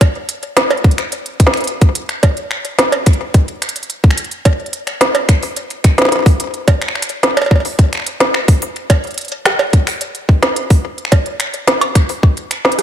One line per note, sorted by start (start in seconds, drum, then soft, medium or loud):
0.01 finger snap medium
0.01 kick loud
0.01 closed hi-hat medium
0.01 cowbell medium
0.29 closed hi-hat medium
0.43 closed hi-hat soft
0.57 finger snap medium
0.57 snare loud
0.57 closed hi-hat medium
0.71 closed hi-hat soft
0.71 cowbell medium
0.77 closed hi-hat soft
0.84 kick loud
0.84 closed hi-hat soft
0.91 closed hi-hat soft
0.98 finger snap medium
0.98 closed hi-hat soft
1.12 closed hi-hat medium
1.26 closed hi-hat soft
1.40 kick loud
1.40 closed hi-hat loud
1.47 snare loud
1.54 finger snap medium
1.54 closed hi-hat soft
1.57 closed hi-hat soft
1.61 closed hi-hat soft
1.64 closed hi-hat soft
1.67 closed hi-hat medium
1.81 kick loud
1.81 closed hi-hat soft
1.95 closed hi-hat medium
2.09 finger snap medium
2.09 closed hi-hat soft
2.23 kick loud
2.23 closed hi-hat medium
2.23 cowbell medium
2.37 closed hi-hat soft
2.51 finger snap medium
2.65 closed hi-hat soft
2.79 snare loud
2.79 closed hi-hat medium
2.92 closed hi-hat soft
2.92 cowbell medium
3.06 finger snap soft
3.06 kick loud
3.06 closed hi-hat medium
3.13 closed hi-hat soft
3.34 kick loud
3.34 closed hi-hat medium
3.48 closed hi-hat soft
3.62 finger snap medium
3.62 closed hi-hat medium
3.69 closed hi-hat medium
3.76 closed hi-hat medium
3.83 closed hi-hat soft
3.90 closed hi-hat medium
4.04 kick loud
4.04 closed hi-hat soft
4.11 finger snap medium
4.11 closed hi-hat soft
4.17 closed hi-hat medium
4.24 closed hi-hat soft
4.31 closed hi-hat soft
4.45 kick loud
4.45 closed hi-hat medium
4.45 cowbell medium
4.66 closed hi-hat soft
4.73 closed hi-hat medium
4.87 finger snap medium
4.87 closed hi-hat soft
5.01 snare loud
5.01 closed hi-hat medium
5.15 closed hi-hat soft
5.15 cowbell medium
5.29 finger snap medium
5.29 kick loud
5.29 closed hi-hat medium
5.43 open hi-hat medium
5.56 closed hi-hat medium
5.70 closed hi-hat soft
5.84 finger snap medium
5.84 kick loud
5.84 closed hi-hat medium
5.98 snare loud
5.98 closed hi-hat soft
6.02 snare medium
6.05 snare medium
6.09 snare medium
6.12 snare soft
6.12 closed hi-hat medium
6.16 snare soft
6.19 snare soft
6.23 kick loud
6.23 snare soft
6.23 open hi-hat medium
6.40 closed hi-hat medium
6.54 closed hi-hat soft
6.68 kick loud
6.68 closed hi-hat medium
6.68 cowbell loud
6.82 finger snap medium
6.82 closed hi-hat soft
6.88 finger snap medium
6.95 finger snap medium
7.02 finger snap soft
7.02 closed hi-hat medium
7.09 closed hi-hat soft
7.23 snare loud
7.23 closed hi-hat medium
7.37 finger snap soft
7.37 closed hi-hat soft
7.37 cowbell medium
7.42 cowbell medium
7.46 cowbell medium
7.51 kick loud
7.51 cowbell soft
7.56 cowbell soft
7.60 cowbell soft
7.65 open hi-hat medium
7.79 kick loud
7.79 closed hi-hat medium
7.93 finger snap medium
7.93 closed hi-hat soft
7.95 finger snap soft
7.97 finger snap soft
8.00 finger snap soft
8.02 finger snap soft
8.04 finger snap soft
8.04 closed hi-hat medium
8.20 snare loud
8.20 closed hi-hat soft
8.34 finger snap medium
8.48 kick loud
8.48 closed hi-hat medium
8.48 open hi-hat medium
8.62 closed hi-hat medium
8.76 closed hi-hat soft
8.90 finger snap medium
8.90 kick loud
8.90 closed hi-hat medium
8.90 cowbell loud
9.04 closed hi-hat soft
9.07 closed hi-hat soft
9.11 closed hi-hat soft
9.14 closed hi-hat soft
9.18 closed hi-hat medium
9.21 closed hi-hat soft
9.25 closed hi-hat soft
9.28 closed hi-hat soft
9.32 closed hi-hat soft
9.45 finger snap medium
9.45 snare loud
9.45 closed hi-hat medium
9.59 cowbell medium
9.73 kick loud
9.73 closed hi-hat medium
9.87 finger snap medium
9.87 open hi-hat medium
10.01 closed hi-hat medium
10.15 closed hi-hat soft
10.29 kick loud
10.43 finger snap medium
10.43 snare loud
10.43 closed hi-hat soft
10.56 closed hi-hat medium
10.70 kick loud
10.70 open hi-hat medium
10.98 closed hi-hat soft
11.05 finger snap medium
11.12 kick loud
11.12 closed hi-hat medium
11.12 cowbell medium
11.26 closed hi-hat soft
11.40 finger snap medium
11.40 closed hi-hat medium
11.54 closed hi-hat soft
11.68 snare loud
11.68 closed hi-hat medium
11.81 closed hi-hat soft
11.81 cowbell loud
11.95 finger snap medium
11.95 kick loud
11.95 closed hi-hat medium
12.09 open hi-hat medium
12.23 kick loud
12.37 closed hi-hat soft
12.51 finger snap medium
12.51 closed hi-hat loud
12.65 snare loud
12.72 closed hi-hat soft
12.79 cross-stick medium
12.79 closed hi-hat medium